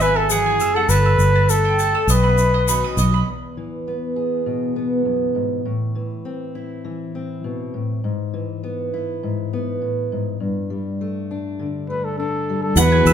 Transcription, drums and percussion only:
0.00 shaker medium
0.30 shaker medium
0.60 shaker medium
0.89 shaker medium
1.19 shaker medium
1.49 shaker medium
1.79 shaker medium
2.09 shaker loud
2.38 shaker medium
2.68 shaker loud
2.98 shaker medium
12.77 shaker loud
13.06 shaker medium

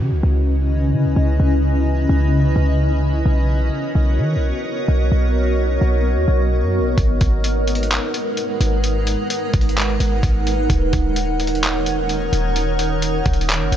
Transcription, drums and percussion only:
6.98 kick loud
6.98 closed hi-hat medium
7.21 kick medium
7.21 closed hi-hat medium
7.44 closed hi-hat medium
7.67 closed hi-hat medium
7.75 closed hi-hat soft
7.83 closed hi-hat soft
7.91 clap loud
7.91 closed hi-hat medium
8.14 closed hi-hat medium
8.37 closed hi-hat medium
8.61 closed hi-hat medium
8.84 closed hi-hat medium
9.07 closed hi-hat medium
9.30 closed hi-hat medium
9.54 kick loud
9.54 closed hi-hat medium
9.61 closed hi-hat soft
9.69 closed hi-hat soft
9.77 clap loud
9.77 closed hi-hat medium
10.00 closed hi-hat medium
10.23 kick medium
10.23 closed hi-hat medium
10.47 closed hi-hat medium
10.70 kick loud
10.70 closed hi-hat medium
10.93 kick medium
10.93 closed hi-hat medium
11.16 closed hi-hat medium
11.40 closed hi-hat medium
11.47 closed hi-hat soft
11.55 closed hi-hat soft
11.63 clap loud
11.63 closed hi-hat medium
11.86 closed hi-hat medium
12.09 closed hi-hat medium
12.33 closed hi-hat medium
12.56 closed hi-hat medium
12.79 closed hi-hat medium
13.02 closed hi-hat medium
13.26 kick loud
13.26 closed hi-hat medium
13.33 closed hi-hat soft
13.41 closed hi-hat medium
13.49 clap loud
13.49 closed hi-hat medium
13.72 closed hi-hat medium

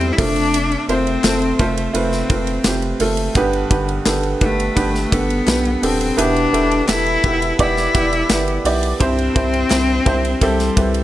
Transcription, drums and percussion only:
0.01 ride soft
0.18 kick loud
0.18 open hi-hat medium
0.18 ride medium
0.36 ride soft
0.54 hi-hat pedal medium
0.54 ride medium
0.72 ride soft
0.89 ride medium
1.07 ride soft
1.24 snare loud
1.24 clap medium
1.24 ride medium
1.42 ride soft
1.59 kick medium
1.59 ride medium
1.77 ride soft
1.95 ride medium
2.12 snare soft
2.30 kick loud
2.30 ride medium
2.47 ride soft
2.64 snare loud
2.64 clap medium
2.64 ride medium
2.82 ride soft
3.00 open hi-hat medium
3.00 ride medium
3.17 ride soft
3.35 kick loud
3.35 hi-hat pedal medium
3.35 ride medium
3.53 ride soft
3.71 kick medium
3.71 ride medium
3.89 ride soft
4.06 snare loud
4.06 clap medium
4.06 ride medium
4.23 ride soft
4.41 kick medium
4.41 ride medium
4.60 ride soft
4.77 kick medium
4.77 ride medium
4.95 snare soft
5.12 kick medium
5.12 ride medium
5.30 ride soft
5.47 snare loud
5.47 clap medium
5.47 ride medium
5.65 ride soft
5.83 open hi-hat medium
5.83 ride medium
6.01 ride soft
6.18 hi-hat pedal medium
6.18 ride medium
6.36 ride soft
6.54 ride medium
6.71 ride soft
6.88 snare loud
6.88 clap medium
6.88 ride medium
7.06 ride soft
7.24 kick medium
7.24 ride medium
7.42 ride medium
7.59 kick medium
7.59 ride medium
7.77 snare soft
7.95 kick medium
7.95 ride medium
8.13 ride soft
8.29 snare loud
8.29 clap medium
8.29 ride medium
8.48 ride soft
8.65 open hi-hat medium
8.65 ride medium
8.83 ride soft
9.01 kick loud
9.01 hi-hat pedal medium
9.01 ride medium
9.19 ride soft
9.36 kick loud
9.36 ride medium
9.54 ride soft
9.70 snare loud
9.70 clap medium
9.70 ride medium
10.06 kick medium
10.06 ride medium
10.25 ride soft
10.41 kick medium
10.41 ride medium
10.59 snare soft
10.59 ride soft
10.77 kick loud
10.77 ride medium
10.94 ride soft

